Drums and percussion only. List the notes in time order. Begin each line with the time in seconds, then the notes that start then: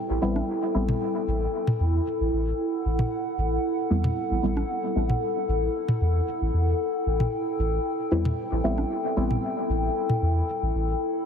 0.36 high conga
0.89 mid tom
1.67 mid tom
2.99 mid tom
4.04 mid tom
4.57 high conga
5.10 mid tom
5.89 mid tom
7.20 mid tom
8.25 mid tom
8.78 high conga
9.31 mid tom
10.10 mid tom